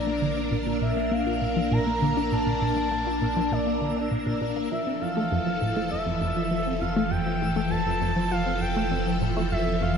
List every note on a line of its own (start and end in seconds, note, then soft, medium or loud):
0.00 4.69 A#1 medium
0.00 4.68 A#3 medium
0.00 4.67 D4 medium
0.00 4.67 A#4 medium
0.00 0.78 D5 loud
0.00 9.97 E6 medium
0.07 0.18 A#3 medium
0.22 0.33 D3 medium
0.36 0.41 D4 loud
0.51 0.56 A#2 medium
0.66 0.74 A#2 medium
0.81 0.92 A#2 medium
0.81 1.14 E5 medium
0.97 1.08 A#3 medium
1.11 1.22 A#3 medium
1.11 1.72 F5 loud
1.27 1.34 F4 medium
1.42 1.46 A#2 medium
1.56 1.61 F3 loud
1.71 1.79 A#2 loud
1.71 2.34 A#5 loud
1.87 1.98 A#3 medium
2.02 2.13 D3 medium
2.17 2.21 D4 loud
2.32 2.36 A#2 medium
2.32 3.54 A5 loud
2.47 2.54 A#2 medium
2.62 2.73 A#2 medium
2.76 2.87 A#3 medium
2.91 3.02 A#3 medium
3.07 3.14 F4 medium
3.22 3.26 A#2 medium
3.37 3.41 F3 loud
3.52 3.59 A#2 loud
3.52 4.42 D5 medium
3.67 3.78 A#3 medium
3.82 3.92 D3 medium
3.96 4.01 D4 loud
4.11 4.16 A#2 medium
4.26 4.34 A#2 medium
4.41 4.52 A#2 medium
4.57 4.67 A#3 medium
4.71 9.97 F1 medium
4.71 9.97 E3 medium
4.71 9.97 F3 medium
4.71 4.83 F3 medium
4.71 9.97 A4 medium
4.71 5.03 E5 medium
4.87 4.94 C4 medium
5.01 5.06 F2 medium
5.01 5.90 F5 loud
5.17 5.24 A3 loud
5.32 5.39 F2 loud
5.47 5.58 F3 medium
5.62 5.73 A2 medium
5.77 5.81 A3 loud
5.91 5.96 F2 medium
5.91 6.82 E5 loud
6.06 6.14 F2 medium
6.21 6.32 F2 medium
6.37 6.47 F3 medium
6.51 6.62 F3 medium
6.66 6.74 C4 medium
6.80 6.86 F2 medium
6.80 7.12 F5 loud
6.96 7.04 A3 loud
7.11 7.19 F2 medium
7.11 7.72 G5 loud
7.26 7.37 F3 medium
7.42 7.53 A2 medium
7.56 7.61 A3 loud
7.70 7.76 F2 medium
7.70 8.30 A5 loud
7.86 7.94 F2 medium
8.01 8.12 F2 medium
8.16 8.27 F3 medium
8.31 8.42 F3 medium
8.31 8.59 F5 loud
8.46 8.54 C4 medium
8.61 8.66 F2 medium
8.61 9.17 G5 loud
8.76 8.84 A3 loud
8.92 8.99 F2 loud
9.06 9.17 F3 medium
9.21 9.32 A2 medium
9.37 9.41 A3 loud
9.51 9.56 F2 medium
9.51 9.83 E5 loud
9.66 9.74 F2 medium
9.81 9.92 F2 medium
9.81 9.97 F5 loud